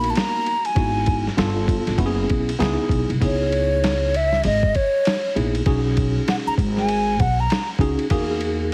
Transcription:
Already playing: upright bass A#1, tine electric piano A#3 B3 D#4 F#4, flute B5
0.04 ride
0.10 flute A5
0.15 flute A#5, snare, hi-hat pedal, ride
0.46 ride
0.65 flute G#5, ride
0.75 upright bass G#1, tine electric piano B3 D#4 E4 F#4, kick, ride
1.06 kick, ride
1.27 snare
1.37 upright bass G1, tine electric piano B3 D4 F4 A4, snare, hi-hat pedal, ride
1.68 kick, ride
1.87 upright bass A1, snare, ride
1.98 upright bass F#1, tine electric piano B3 C#4 E4 F#4, kick, ride
2.06 tine electric piano G#4
2.30 upright bass B1, kick, ride
2.49 ride
2.59 upright bass C#2, tine electric piano B3 D#4 E4 G#4, snare, hi-hat pedal, ride
2.89 upright bass B1, kick, ride
3.09 upright bass C2, ride
3.20 upright bass C#2, tine electric piano B3 D#4 E4 G#4, kick, ride
3.25 flute C#5
3.52 ride
3.84 snare, hi-hat pedal, ride
4.14 flute E5, ride
4.32 snare
4.44 upright bass G#1, flute D#5, ride
4.63 kick
4.75 flute C#5, kick, ride
5.05 snare, hi-hat pedal, ride
5.35 upright bass A#1, tine electric piano B3 D#4 E4 G#4, ride
5.55 ride
5.66 upright bass B1, tine electric piano C#4 D#4 F#4 G#4, kick, ride
5.97 kick, ride
6.28 flute F#5, snare, hi-hat pedal, ride
6.47 flute A#5, muted upright bass stroke
6.58 upright bass G#1, kick, ride
6.77 flute G#5, snare
6.89 ride
7.20 upright bass B1, flute F#5, kick, ride
7.40 flute A#5
7.50 snare, hi-hat pedal, ride
7.79 upright bass C#2, tine electric piano C#4 D#4 F#4 G#4, kick, ride
7.99 ride
8.10 upright bass E2, tine electric piano A#3 D#4 F#4 G#4, kick, ride
8.41 ride

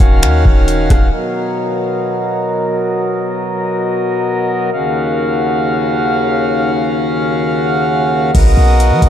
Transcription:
Already playing: harmonium D#3 C#4 F#4 F5
0.00 808-style bass D#1, kick, closed hi-hat
0.23 808-style bass D#2, finger snap, closed hi-hat
0.45 808-style bass D#1, kick
0.68 closed hi-hat
0.90 808-style bass D#1, kick, cross-stick, closed hi-hat
1.13 harmonium B2 F#3 A#4 D#5
4.74 harmonium D#2 C#3 F#4 F5
8.34 808-style bass B1, harmonium B3 F#4 A#4 D#5, kick, closed hi-hat, crash
8.57 808-style bass B1
8.80 closed hi-hat
8.91 808-style bass F#3
9.02 808-style bass B1, kick, closed hi-hat

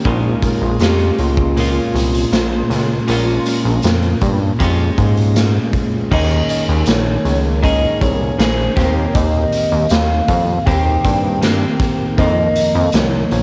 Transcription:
0.04 analog synth bass A#1, clean electric guitar A#2 G#3 C#4 F4, synth keys G#3 C#4 F4 A#4, soft synth lead D#4, kick, closed hi-hat
0.42 synth keys G#3 C#4 F4 A#4, kick, closed hi-hat
0.62 analog synth bass A#1, soft synth lead F4
0.79 analog synth bass F2, clean electric guitar A#2 G#3 C#4 F4, soft synth lead G4, snare, closed hi-hat, tambourine
0.99 closed hi-hat
1.19 analog synth bass C#2, soft synth lead F4, closed hi-hat
1.37 kick
1.55 clean electric guitar A#2 G#3 C#4, synth keys G#3 C4 F4 A#4, closed hi-hat
1.60 synth keys C#4, clean electric guitar F4
1.94 analog synth bass C2, closed hi-hat
2.14 closed hi-hat
2.32 analog synth bass A#1, snare, closed hi-hat, tambourine
2.70 analog synth bass C#2, snare, closed hi-hat
3.07 analog synth bass A#1, clean electric guitar A#2 C#4 F4, synth keys G#3 C#4 F4 A#4, closed hi-hat
3.46 synth keys G#3 C#4 F4 A#4, closed hi-hat
3.65 analog synth bass A#1
3.82 analog synth bass F2, snare, closed hi-hat, tambourine
4.02 closed hi-hat
4.21 analog synth bass G2, kick, closed hi-hat
4.58 analog synth bass F2, clean electric guitar A#2 G#3 C#4, synth keys G#3 C#4 F4 G4, kick, closed hi-hat
4.63 clean electric guitar F4
4.98 analog synth bass G#2, kick, closed hi-hat
5.17 closed hi-hat
5.36 snare, closed hi-hat, tambourine
5.73 kick, closed hi-hat
6.10 analog synth bass D#2, clean electric guitar D#3 A#3 C#4 G#4, synth keys G#3 A#3 C#4 D#4 A#4, soft synth lead D#5, kick, crash
6.49 soft synth lead D#5, closed hi-hat
6.68 analog synth bass D#2
6.86 analog synth bass A#1, soft synth lead C#5, snare, closed hi-hat, tambourine
7.25 analog synth bass C#2, closed hi-hat
7.62 clean electric guitar D#3 A#3 C#4 G#4, synth keys G#3 A#3 C#4 D#4 A#4, soft synth lead D#5, kick, closed hi-hat
8.00 analog synth bass C2, soft synth lead C#5, kick, closed hi-hat
8.38 analog synth bass A#1, clean electric guitar D#3 A#3 C#4 G#4, soft synth lead C5, snare, closed hi-hat, tambourine
8.76 analog synth bass D#2, clean electric guitar D#3 A#3 C4 G4, synth keys G#3 C4 D#4 G4 A#4, kick, snare, closed hi-hat
8.95 soft synth lead C#5
9.14 analog synth bass D#2, soft synth lead D#5, kick, closed hi-hat
9.52 closed hi-hat
9.72 analog synth bass D#2
9.89 analog synth bass D#2, soft synth lead F5, snare, closed hi-hat, tambourine
10.28 analog synth bass F2, kick, closed hi-hat
10.66 analog synth bass D#2, clean electric guitar D#3 A#3 C4 G4, synth keys C4 D#4 G4 G#4 C5, soft synth lead G5, kick, closed hi-hat
11.05 analog synth bass G2, kick, closed hi-hat
11.42 clean electric guitar D#3 A#3 C4 G4, snare, closed hi-hat, tambourine
11.80 kick, snare, closed hi-hat
12.16 clean electric guitar F2 D#3 A#3, analog synth bass F2, synth keys F3 A#3 D#4 A#4, soft synth lead D#5, kick, closed hi-hat
12.56 closed hi-hat
12.75 analog synth bass F2
12.92 analog synth bass C2, soft synth lead C#5, snare, closed hi-hat, tambourine
13.31 analog synth bass A#1, soft synth lead C#5, closed hi-hat

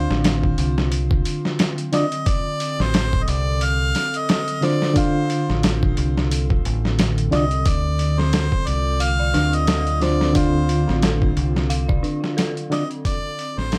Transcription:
Already playing: reed electric piano D3 D4 F4 F5, ambient pad D3 C4 F4, harmonica C5
0.10 fingered electric bass A1, snare
0.24 snare, open hi-hat
0.43 kick
0.58 fingered electric bass C2, open hi-hat
0.78 snare
0.92 open hi-hat
1.11 kick
1.25 open hi-hat
1.45 snare
1.59 snare, open hi-hat
1.78 closed hi-hat
1.92 reed electric piano D3 D4 F4 D5, harmonica D#5, snare, open hi-hat
2.12 closed hi-hat
2.26 ambient pad A4, harmonica D5, kick, open hi-hat
2.60 open hi-hat
2.80 fingered electric bass A1, harmonica C5, snare
2.94 snare, open hi-hat
3.13 kick
3.23 harmonica D#5
3.28 fingered electric bass C2, harmonica D5, open hi-hat
3.61 harmonica F5, open hi-hat
3.95 snare, open hi-hat
4.14 harmonica D#5, closed hi-hat
4.29 snare, open hi-hat
4.48 closed hi-hat
4.61 reed electric piano D3 D4 F4 C5, harmonica D5, snare, open hi-hat
4.82 snare
4.94 reed electric piano D3 D4 F4 F5, kick, open hi-hat
4.98 harmonica C5
5.30 open hi-hat
5.50 fingered electric bass A1, snare
5.63 snare, open hi-hat
5.83 kick
5.97 fingered electric bass C2, open hi-hat
6.17 snare
6.31 open hi-hat
6.50 kick
6.65 fingered electric bass A1, open hi-hat
6.85 snare
6.99 snare, open hi-hat
7.18 closed hi-hat
7.31 fingered electric bass C2, reed electric piano D3 D4 F4 D5, harmonica D#5, snare, open hi-hat
7.51 closed hi-hat
7.65 fingered electric bass D2, ambient pad C4 F4, harmonica D5, kick, open hi-hat
7.99 open hi-hat
8.18 synth bell C4, harmonica C5, snare
8.33 synth bell A4, snare, open hi-hat
8.52 kick
8.67 fingered electric bass C2, harmonica D5, open hi-hat
9.00 synth bell F5, harmonica F5, open hi-hat
9.19 synth bell D5
9.34 fingered electric bass D2, synth bell D4, snare, open hi-hat
9.53 harmonica D#5, closed hi-hat
9.67 synth bell A4, snare, open hi-hat
9.87 closed hi-hat
10.00 reed electric piano D3 D4 F4 C5, harmonica D5, snare, open hi-hat
10.20 synth bell C4, snare
10.33 reed electric piano D3 D4 F4 F5, harmonica C5, kick, open hi-hat
10.69 open hi-hat
10.88 fingered electric bass A1, synth bell C4, snare
11.02 synth bell A4, snare, open hi-hat
11.22 kick
11.37 fingered electric bass C2, open hi-hat
11.56 snare
11.70 synth bell F5, open hi-hat
11.88 synth bell D5, kick
12.03 synth bell D4, open hi-hat
12.24 snare
12.37 synth bell A4, snare, open hi-hat
12.57 closed hi-hat
12.70 reed electric piano D3 D4 F4 D5, harmonica D#5, snare, open hi-hat
12.90 synth bell C4, closed hi-hat
13.04 ambient pad A4, harmonica D5, kick, open hi-hat
13.39 open hi-hat
13.57 fingered electric bass A1, synth bell C4, harmonica C5, snare
13.72 synth bell A4, snare, open hi-hat

